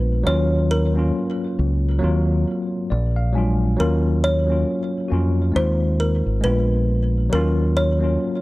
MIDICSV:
0, 0, Header, 1, 4, 480
1, 0, Start_track
1, 0, Tempo, 882353
1, 139, Time_signature, 4, 2, 24, 8
1, 4578, End_track
2, 0, Start_track
2, 0, Title_t, "Kalimba"
2, 0, Program_c, 0, 108
2, 145, Note_on_c, 0, 73, 86
2, 360, Note_off_c, 0, 73, 0
2, 386, Note_on_c, 0, 70, 91
2, 742, Note_off_c, 0, 70, 0
2, 2067, Note_on_c, 0, 70, 85
2, 2282, Note_off_c, 0, 70, 0
2, 2306, Note_on_c, 0, 73, 89
2, 2662, Note_off_c, 0, 73, 0
2, 3025, Note_on_c, 0, 72, 81
2, 3240, Note_off_c, 0, 72, 0
2, 3264, Note_on_c, 0, 70, 72
2, 3480, Note_off_c, 0, 70, 0
2, 3502, Note_on_c, 0, 71, 82
2, 3719, Note_off_c, 0, 71, 0
2, 3986, Note_on_c, 0, 70, 91
2, 4201, Note_off_c, 0, 70, 0
2, 4225, Note_on_c, 0, 73, 85
2, 4578, Note_off_c, 0, 73, 0
2, 4578, End_track
3, 0, Start_track
3, 0, Title_t, "Tine electric piano"
3, 0, Program_c, 1, 4
3, 0, Control_c, 1, 64, 127
3, 0, Note_on_c, 1, 56, 65
3, 0, Note_on_c, 1, 59, 81
3, 0, Note_on_c, 1, 62, 74
3, 0, Note_on_c, 1, 65, 75
3, 55, Note_off_c, 1, 59, 0
3, 60, Note_off_c, 1, 62, 0
3, 64, Note_off_c, 1, 65, 0
3, 127, Note_on_c, 1, 54, 97
3, 136, Note_on_c, 1, 58, 91
3, 145, Note_on_c, 1, 61, 89
3, 146, Control_c, 1, 64, 0
3, 149, Note_off_c, 1, 56, 0
3, 154, Note_on_c, 1, 65, 111
3, 248, Control_c, 1, 64, 127
3, 400, Note_off_c, 1, 54, 0
3, 404, Note_off_c, 1, 58, 0
3, 409, Note_off_c, 1, 61, 0
3, 414, Note_off_c, 1, 65, 0
3, 510, Note_on_c, 1, 54, 66
3, 519, Note_on_c, 1, 58, 66
3, 527, Note_on_c, 1, 61, 65
3, 536, Note_on_c, 1, 65, 86
3, 1075, Note_off_c, 1, 54, 0
3, 1082, Note_on_c, 1, 54, 106
3, 1084, Note_off_c, 1, 58, 0
3, 1091, Note_on_c, 1, 58, 76
3, 1100, Note_on_c, 1, 60, 75
3, 1102, Note_off_c, 1, 61, 0
3, 1104, Note_off_c, 1, 65, 0
3, 1107, Control_c, 1, 64, 0
3, 1110, Note_on_c, 1, 65, 92
3, 1213, Control_c, 1, 64, 127
3, 1491, Note_off_c, 1, 54, 0
3, 1496, Note_off_c, 1, 58, 0
3, 1500, Note_off_c, 1, 60, 0
3, 1506, Note_off_c, 1, 65, 0
3, 1580, Note_on_c, 1, 74, 71
3, 1587, Control_c, 1, 64, 0
3, 1691, Control_c, 1, 64, 127
3, 1711, Note_off_c, 1, 74, 0
3, 1722, Note_on_c, 1, 77, 70
3, 1810, Note_on_c, 1, 54, 85
3, 1813, Note_off_c, 1, 77, 0
3, 1819, Note_on_c, 1, 56, 83
3, 1825, Note_on_c, 1, 80, 61
3, 1829, Note_on_c, 1, 62, 82
3, 1839, Note_on_c, 1, 65, 84
3, 2001, Note_off_c, 1, 54, 0
3, 2006, Note_off_c, 1, 56, 0
3, 2011, Note_off_c, 1, 62, 0
3, 2016, Note_off_c, 1, 65, 0
3, 2045, Note_off_c, 1, 80, 0
3, 2049, Note_on_c, 1, 54, 86
3, 2058, Note_on_c, 1, 58, 85
3, 2065, Control_c, 1, 64, 0
3, 2067, Note_on_c, 1, 61, 90
3, 2076, Note_on_c, 1, 65, 105
3, 2173, Control_c, 1, 64, 127
3, 2321, Note_off_c, 1, 54, 0
3, 2326, Note_off_c, 1, 58, 0
3, 2330, Note_off_c, 1, 61, 0
3, 2335, Note_off_c, 1, 65, 0
3, 2429, Note_on_c, 1, 54, 70
3, 2439, Note_on_c, 1, 58, 59
3, 2448, Note_on_c, 1, 61, 59
3, 2458, Note_on_c, 1, 65, 77
3, 2694, Note_off_c, 1, 54, 0
3, 2699, Note_off_c, 1, 58, 0
3, 2703, Note_off_c, 1, 61, 0
3, 2708, Note_off_c, 1, 65, 0
3, 2766, Note_on_c, 1, 66, 74
3, 2775, Note_on_c, 1, 58, 69
3, 2784, Note_on_c, 1, 61, 79
3, 2793, Note_on_c, 1, 65, 91
3, 3002, Note_on_c, 1, 56, 80
3, 3012, Note_on_c, 1, 60, 69
3, 3013, Note_off_c, 1, 66, 0
3, 3017, Note_off_c, 1, 58, 0
3, 3020, Note_on_c, 1, 63, 67
3, 3021, Note_off_c, 1, 61, 0
3, 3023, Note_off_c, 1, 65, 0
3, 3027, Control_c, 1, 64, 0
3, 3030, Note_on_c, 1, 65, 75
3, 3129, Control_c, 1, 64, 127
3, 3412, Note_off_c, 1, 56, 0
3, 3416, Note_off_c, 1, 60, 0
3, 3421, Note_off_c, 1, 63, 0
3, 3425, Note_off_c, 1, 65, 0
3, 3488, Note_on_c, 1, 56, 80
3, 3497, Note_on_c, 1, 59, 68
3, 3506, Control_c, 1, 64, 0
3, 3506, Note_on_c, 1, 62, 67
3, 3515, Note_on_c, 1, 65, 80
3, 3602, Control_c, 1, 64, 127
3, 3894, Note_off_c, 1, 56, 0
3, 3899, Note_off_c, 1, 59, 0
3, 3904, Note_off_c, 1, 62, 0
3, 3908, Note_off_c, 1, 65, 0
3, 3969, Note_on_c, 1, 54, 97
3, 3980, Note_on_c, 1, 58, 85
3, 3985, Control_c, 1, 64, 0
3, 3988, Note_on_c, 1, 61, 89
3, 3997, Note_on_c, 1, 65, 115
3, 4093, Control_c, 1, 64, 127
3, 4241, Note_off_c, 1, 54, 0
3, 4246, Note_off_c, 1, 58, 0
3, 4250, Note_off_c, 1, 61, 0
3, 4255, Note_off_c, 1, 65, 0
3, 4345, Note_on_c, 1, 54, 73
3, 4353, Note_on_c, 1, 58, 67
3, 4363, Note_on_c, 1, 61, 61
3, 4373, Note_on_c, 1, 65, 86
3, 4578, Note_off_c, 1, 54, 0
3, 4578, Note_off_c, 1, 58, 0
3, 4578, Note_off_c, 1, 61, 0
3, 4578, Note_off_c, 1, 65, 0
3, 4578, End_track
4, 0, Start_track
4, 0, Title_t, "Fingered electric bass"
4, 0, Program_c, 2, 33
4, 0, Note_on_c, 2, 34, 109
4, 120, Note_off_c, 2, 34, 0
4, 144, Note_on_c, 2, 39, 102
4, 600, Note_off_c, 2, 39, 0
4, 864, Note_on_c, 2, 37, 105
4, 1085, Note_off_c, 2, 37, 0
4, 1106, Note_on_c, 2, 39, 105
4, 1325, Note_off_c, 2, 39, 0
4, 1586, Note_on_c, 2, 34, 114
4, 2041, Note_off_c, 2, 34, 0
4, 2066, Note_on_c, 2, 39, 91
4, 2521, Note_off_c, 2, 39, 0
4, 2784, Note_on_c, 2, 41, 87
4, 3004, Note_off_c, 2, 41, 0
4, 3023, Note_on_c, 2, 39, 100
4, 3381, Note_off_c, 2, 39, 0
4, 3406, Note_on_c, 2, 32, 75
4, 3495, Note_off_c, 2, 32, 0
4, 3505, Note_on_c, 2, 34, 109
4, 3960, Note_off_c, 2, 34, 0
4, 3986, Note_on_c, 2, 39, 97
4, 4441, Note_off_c, 2, 39, 0
4, 4578, End_track
0, 0, End_of_file